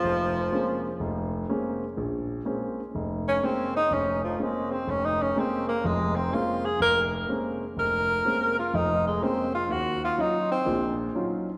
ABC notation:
X:1
M:4/4
L:1/8
Q:"Swing" 1/4=124
K:Bbdor
V:1 name="Tenor saxophone"
F,6 z2 | [K:Bbm] z4 z D C E | D F, A, C (3D E D C B, | A, C F A B z3 |
B3 F E A, C F | G F E C2 z3 |]
V:2 name="Grand piano"
F,,,2 [A,B,CD] z F,,,2 [A,B,CD] z | [K:Bbm] B,,,2 [A,B,CD] z F,,,2 [A,B,CD] z | F,,,2 [A,B,CD] z F,,,2 [A,B,CD] z | [F,,,F,,]2 [A,B,CD] z F,,,2 [A,B,CD] z |
F,,,2 [A,B,CD] z [F,,,F,,]2 [A,B,CD] z | E,,2 [G,DEF] z [B,,,B,,]2 [G,DEF] z |]